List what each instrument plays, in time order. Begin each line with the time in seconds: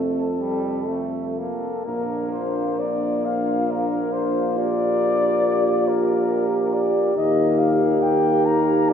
Already playing: tuba F2, trombone A3, euphonium C4, french horn section A4, flugelhorn A4
0.40 trombone G3
0.88 trombone A3
1.37 trombone A#3, flugelhorn A4
1.86 tuba A#1, trombone A#3, euphonium D4, french horn section F4, flugelhorn A#4
2.33 flugelhorn C5
2.79 flugelhorn D5
3.26 flugelhorn F5
3.71 flugelhorn A#4
4.13 flugelhorn C5
4.56 euphonium F4, french horn section G4, flugelhorn D5
5.88 flugelhorn A#4
6.73 flugelhorn D5
7.16 tuba D#2, trombone A#3, euphonium D#4, flugelhorn D#5
7.59 flugelhorn F5
8.02 flugelhorn G5
8.46 flugelhorn A#5
8.89 flugelhorn D5